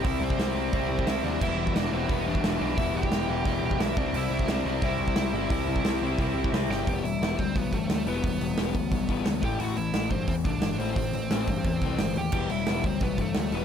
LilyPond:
<<
  \new Staff \with { instrumentName = "Lead electric guitar" } { \time 4/4 \key e \minor \tempo 4 = 176 <e' e''>8 <c' c''>2~ <c' c''>8 <e' e''>8 <d' d''>8 | <e' e''>8 <e' e''>8 <d' d''>8 <c' c''>8 <b b'>8 <d' d''>4. | <e' e''>8 <g' g''>2~ <g' g''>8 <e' e''>8 <d' d''>8 | <e' e''>8 <e' e''>8 <d' d''>8 <d' d''>8 <e' e''>2~ |
<e' e''>2. r8 <g' g''>8 | <g' g''>8 <e' e''>4 <c' c''>8 <b b'>8 <a a'>4 <b b'>8~ | <b b'>2.~ <b b'>8 <g' g''>8 | <fis' fis''>8 <e' e''>4 <c' c''>8 <c' c''>8 <d' d''>4 <c' c''>8~ |
<c' c''>2.~ <c' c''>8 <g' g''>8 | <g' g''>8 <e' e''>4 <c' c''>8 <b b'>8 <a a'>4 <b b'>8 | }
  \new Staff \with { instrumentName = "Overdriven electric guitar" } { \clef bass \time 4/4 \key e \minor <c g c' e'>4 <c g c' e'>8 <c g c' e'>8 <c g c' e'>4 <c g c' e'>8 <c g c' e'>8 | <e g b e'>4 <e g b e'>8 <e g b e'>8 <e g b e'>4 <e g b e'>8 <e g b e'>8 | <e g b e'>4 <e g b e'>8 <e g b e'>8 <e g b e'>4 <e g b e'>8 <c g c' e'>8 | <c g c' e'>4 <c g c' e'>8 <c g c' e'>8 <c g c' e'>4 <c g c' e'>8 <c g c' e'>8 |
<c g c' e'>4 <c g c' e'>8 <c g c' e'>8 <c g c' e'>4 <c g c' e'>8 <c g c' e'>8 | <e g b>8 <e g>8 <e g b>8 <e g>8 <e g>8 <e g>8 <e g>8 <e g b>8 | <e g>8 <e g>8 <e g b>8 <e g>8 <e g>8 <e g b>8 <e g>8 <a, e a>8 | <a, e a>8 <a, e>8 <a, e a>8 <a, e>8 <a, e>8 <a, e>8 <a, e>8 <a, e a>8 |
<a, e>8 <a, e>8 <a, e a>8 <a, e>8 <a, e>8 <a, e a>8 <a, e>8 <a, e>8 | <e g b>8 <e g>8 <e g b>8 <e g>8 <e g>8 <e g>8 <e g>8 <e g b>8 | }
  \new Staff \with { instrumentName = "Distorted electric guitar" } { \clef bass \time 4/4 \key e \minor <c g c'>4 <c g c'>8 <c g c'>8 <c g c'>4 <c g c'>8 <c g c'>8 | <e, b, e>4 <e, b, e>8 <e, b, e>8 <e, b, e>4 <e, b, e>8 <e, b, e>8 | <e, b, e>4 <e, b, e>8 <e, b, e>8 <e, b, e>4 <e, b, e>8 <c g c'>8 | <c g c'>4 <c g c'>8 <c g c'>8 <c g c'>4 <c g c'>8 <c g c'>8 |
<c g c'>4 <c g c'>8 <c g c'>8 <c g c'>4 <c g c'>8 <c g c'>8 | r1 | r1 | r1 |
r1 | r1 | }
  \new Staff \with { instrumentName = "Picked electric bass" } { \clef bass \time 4/4 \key e \minor c,8 c,8 c,8 c,8 c,8 c,8 c,8 dis,8 | e,,8 e,,8 e,,8 e,,8 e,,8 e,,8 e,,8 b,,8 | e,,8 e,,8 e,,8 e,,8 e,,8 e,,8 b,,8 c,8 | c,8 c,8 c,8 c,8 c,8 c,8 c,8 g,,8 |
c,8 c,8 c,8 c,8 c,8 c,8 c,8 g,,8 | e,,8 e,,8 e,,8 d,8 b,,8 g,,8 d,8 e,,8 | e,,8 e,,8 e,,8 d,8 b,,8 g,,8 d,8 a,,8 | a,,8 a,,8 a,,8 g,8 e,8 c,8 g,,8 a,,8 |
a,,8 a,,8 a,,8 g,8 e,8 c,8 g,,8 dis,8 | e,,8 e,,8 e,,8 d,8 b,,8 g,,8 d,8 e,,8 | }
  \new DrumStaff \with { instrumentName = "Drums" } \drummode { \time 4/4 <hho bd>8. bd16 <hho sn>4 <hho bd>8. bd16 <hho sn>4 | <cymc bd>8. bd16 <hho sn>4 <hho bd>8. bd16 <hho sn>4 | <hho bd>8. bd16 <hho sn>4 <hho bd>8. bd16 <hho sn>8 bd8 | hho8. bd16 <hho sn>4 <hho bd>8. bd16 <hho sn>4 |
<hho bd>8. bd16 <hho sn>4 <hho bd>8. bd16 <hho sn>8 sn8 | <hho bd>8 hho8 <hho sn>8 <hho bd>8 <hho bd>8 <hho bd>8 <hho sn>8 hho8 | <hho bd>8 hho8 <hho sn>8 <hho bd>8 <hho bd>8 <hho bd>8 <hho sn>8 <hho bd>8 | hho8 hho8 <hho sn>8 <hho bd>8 <hho bd>8 <hho bd>8 <hho sn>8 hho8 |
<hho bd>8 hho8 <hho sn>8 <hho bd>8 <hho bd>8 <hho bd>8 <hho sn>8 hho8 | <cymc bd>8 hho8 <hho sn>8 <hho bd>8 <hho bd>8 <hho bd>8 <hho sn>8 hho8 | }
>>